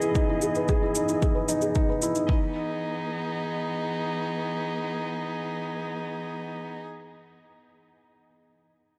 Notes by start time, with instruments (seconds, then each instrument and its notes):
Already playing: string quartet E3 B3 G#4 D#5, felt piano D#4 E4 G#4 B4
0.02 felt piano E4, shaker
0.15 felt piano D#4, kick, shaker
0.29 felt piano E4
0.42 felt piano G#4, shaker
0.55 felt piano B4, shaker
0.68 felt piano G#4, kick, shaker
0.83 felt piano E4
0.95 felt piano D#4, shaker
1.09 felt piano E4, shaker
1.22 felt piano G#4, kick, shaker
1.35 felt piano B4
1.48 felt piano D#4, shaker
1.62 felt piano G#4, shaker
1.75 felt piano D#4, kick, shaker
1.89 felt piano B4
2.02 felt piano E4, shaker
2.15 felt piano D#4, shaker
2.29 string quartet E3, felt piano D#4, kick
2.38 string quartet B3
2.46 string quartet D#4
2.53 string quartet G#4